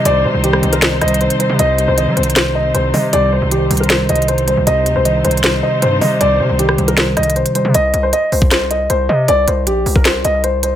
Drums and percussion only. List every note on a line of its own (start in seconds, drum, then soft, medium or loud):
0.05 closed hi-hat loud
0.44 closed hi-hat medium
0.53 cross-stick medium
0.63 closed hi-hat soft
0.73 closed hi-hat medium
0.82 snare loud
0.82 closed hi-hat medium
1.01 cross-stick medium
1.01 closed hi-hat medium
1.08 closed hi-hat medium
1.14 closed hi-hat medium
1.21 closed hi-hat soft
1.30 closed hi-hat medium
1.40 closed hi-hat medium
1.59 closed hi-hat loud
1.78 closed hi-hat medium
1.98 closed hi-hat medium
2.17 closed hi-hat medium
2.23 closed hi-hat medium
2.30 closed hi-hat medium
2.36 snare loud
2.36 closed hi-hat medium
2.75 closed hi-hat medium
2.94 open hi-hat medium
3.13 closed hi-hat medium
3.51 closed hi-hat medium
3.71 closed hi-hat medium
3.71 open hi-hat medium
3.77 closed hi-hat medium
3.84 closed hi-hat soft
3.90 snare loud
3.90 closed hi-hat medium
4.09 closed hi-hat medium
4.16 closed hi-hat medium
4.22 closed hi-hat soft
4.28 closed hi-hat medium
4.38 closed hi-hat soft
4.48 closed hi-hat medium
4.67 closed hi-hat loud
4.86 closed hi-hat medium
5.05 closed hi-hat medium
5.25 closed hi-hat medium
5.31 closed hi-hat medium
5.37 closed hi-hat medium
5.44 snare loud
5.44 closed hi-hat medium
5.82 closed hi-hat medium
6.01 open hi-hat medium
6.21 closed hi-hat loud
6.59 closed hi-hat medium
6.69 cross-stick medium
6.78 closed hi-hat soft
6.88 closed hi-hat medium
6.97 snare loud
6.97 closed hi-hat medium
7.17 cross-stick medium
7.17 closed hi-hat medium
7.23 closed hi-hat medium
7.30 closed hi-hat medium
7.36 closed hi-hat soft
7.46 closed hi-hat medium
7.55 closed hi-hat medium
7.74 closed hi-hat loud
7.94 closed hi-hat medium
8.13 closed hi-hat medium
8.32 open hi-hat medium
8.42 kick medium
8.51 snare loud
8.51 closed hi-hat medium
8.71 closed hi-hat medium
8.90 closed hi-hat medium
9.28 closed hi-hat medium
9.48 closed hi-hat medium
9.67 closed hi-hat medium
9.86 open hi-hat medium
9.96 kick medium
10.05 snare loud
10.05 closed hi-hat medium
10.25 closed hi-hat medium
10.44 closed hi-hat medium
10.63 closed hi-hat medium